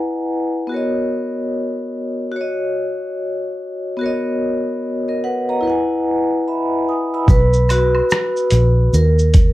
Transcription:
Already playing: E4 B4 D#5 F#5 G#5 A#5
0.67 B3 F#4
0.72 A#4 C#5
0.76 D#5
2.32 F#4
2.36 C#5
2.41 D#5
3.97 B3 F#4
4.01 A#4 C#5
4.06 D#5
5.08 A#4 D#5
5.24 B4 F#5
5.49 D#5 A#5
5.61 E4 B4
5.65 D#5 F#5
5.70 G#5
6.48 E5 B5
6.89 G#5 D#6
7.14 B5 E6
7.28 B1 B4, kick, shaker
7.53 shaker
7.69 F#4, closed hi-hat, high woodblock, shaker
7.95 high woodblock
8.10 cross-stick, shaker
8.37 shaker
8.50 A#1, closed hi-hat, shaker
8.52 shaker
8.93 D#2 A#4, shaker
9.19 shaker
9.34 kick, closed hi-hat, shaker

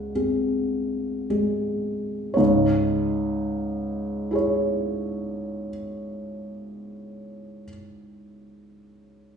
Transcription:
Already playing: C#2 G#3 G#4 F#5
0.15 C4 G#4
1.30 G#3 G#4
2.34 C#2 G#2 C#5
4.31 E4 G#4
4.35 C#5

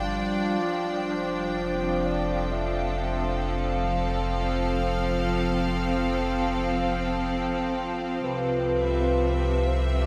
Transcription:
Already playing: G1 F3 G3 D4 F4 D5 G5
0.61 F1 F3 C5
1.72 C4
2.04 A4 D5
2.51 E5
3.47 F5
3.80 F5
4.42 C5
8.23 C2 C3 B4
8.78 E5
9.67 C5
9.96 D5

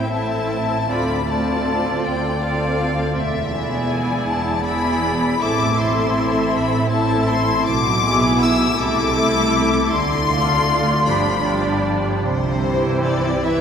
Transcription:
Already playing: A1 A2 G5
0.11 C4 E4 A4 E5 A5
0.88 D2 C4 F4 A4 D5 B5
1.27 C4 F4 A4 D5 A5
2.04 D2 G5
2.42 C4 F4 A4 D5 F5
3.15 E1 E2 E5
3.52 B3 E4 G#4 D5
3.88 G#5
4.27 E1 E2 A5
4.65 B3 E4 G#4 D5 B5
5.39 A1 A2 C4 E4 A4 E5 D6
5.78 C4 E4 A4 E5 C6
6.53 A1 A2 B5
6.89 C4 E4 A4 E5 A5
7.27 C6
7.65 B1 B2 D6
8.01 B3 E4 G#4 E5
8.39 E6
8.77 C2 C3 A3 E4 A4 E5 D6
9.14 A3 E4 A4 E5
9.91 D2 D3 C6
10.29 A3 F4 A4 D5
11.05 G1 G2 F3 D4 G4 D5 B5
11.43 F3 D4 G4 D5
12.22 C2 C3 C5
12.61 E3 E4 G4 C5
13.04 D5
13.44 E1 E2 E3 E4 B4 E5

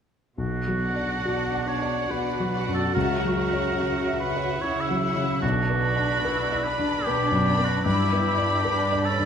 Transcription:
0.38 B1 B2 F#4
0.68 F#3
0.81 D4 D5 F#5
0.96 D5
1.25 B2 D4 F#4
1.54 F#5
1.67 D4 C#5 D5 F#5
1.82 D5
2.11 B2 F#4 B4
2.40 F#3
2.52 D4 D5 F#5
2.68 F#2
2.74 A4
2.94 C#2 C#3 C#4 A#4 E5 F#5
3.25 F#3
3.37 C#4 E5 F#5
3.53 C#5
3.79 C#3 F#4
4.08 E5
4.20 C#4 B4 E5 F#5
4.36 C#5
4.61 C#3 E4 C#5
4.81 E5
4.90 F#3
5.03 C#4 E5 F#5
5.16 C#3
5.42 B1 B2 D4 F#4
5.70 B3
5.84 D4 D5 B5
5.96 D5
6.25 B2 E4 B4
6.52 D5
6.64 D4 B4 D5 B5
6.79 D4
7.04 B2 B3 G4
7.31 F#2
7.45 D4 D5 B5
7.59 B3
7.65 F#4
7.84 G2 D4 E4 G4 D5 B5
8.12 B3
8.24 D4 D5 B5
8.38 D5
8.65 G2 D4 B4
8.92 D5
9.04 C#4 D4 A4 D5 B5
9.19 D4

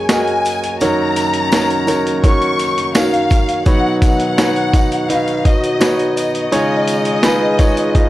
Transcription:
Already playing: F#2 C#3 F#3 G#3 A#3 F#4 G#4 A#4 C#5
0.09 F#4 G#4 A#4 D#5 G#5, snare, closed hi-hat, tambourine
0.27 closed hi-hat
0.45 closed hi-hat, tambourine
0.64 closed hi-hat
0.80 F#2 C#3 D#3 F#3 C#4 D#4 F#4 A#4 C#5 A#5, closed hi-hat, tambourine
1.16 closed hi-hat, tambourine
1.34 closed hi-hat
1.52 D#4 F#4 A#4 C#5, snare, closed hi-hat, tambourine
1.70 closed hi-hat
1.87 D#4 F#4 A#4 C#5, closed hi-hat, tambourine
2.07 closed hi-hat
2.24 D#4 F#4 A#4 C#5 C#6, kick, closed hi-hat, tambourine
2.42 closed hi-hat
2.59 closed hi-hat, tambourine
2.78 closed hi-hat
2.95 D#4 F#4 A#4 C#5 F5, snare, closed hi-hat, tambourine
3.14 closed hi-hat
3.30 kick, closed hi-hat, tambourine
3.49 closed hi-hat
3.66 B2 D#3 F#3 B3 D#4 F#4 B4 C#5 F#5, kick, closed hi-hat, tambourine
4.02 F#5, kick, closed hi-hat, tambourine
4.20 closed hi-hat
4.37 D#4 F#4 B4 C#5, snare, closed hi-hat, tambourine
4.56 closed hi-hat
4.74 D#4 F#4 B4 D#5, kick, closed hi-hat, tambourine
4.92 closed hi-hat
5.08 D#4 F#4 B4 D#5 F5, closed hi-hat, tambourine
5.28 closed hi-hat
5.45 F#3 F#4 D#5, kick, closed hi-hat, tambourine
5.64 closed hi-hat
5.80 D#4 F#4 B4 C#5, snare, closed hi-hat, tambourine
5.99 closed hi-hat
6.16 D#5, closed hi-hat, tambourine
6.35 closed hi-hat
6.51 C#3 D#3 G#3 D#4 F4 G#4 C#5, closed hi-hat, tambourine
6.88 closed hi-hat, tambourine
7.05 closed hi-hat
7.23 D#4 F4 G#4 B4, snare, closed hi-hat, tambourine
7.59 D#4 F4 G#4 C#5, kick, closed hi-hat, tambourine
7.77 closed hi-hat
7.95 D#4 F4 G#4 D#5, kick, closed hi-hat

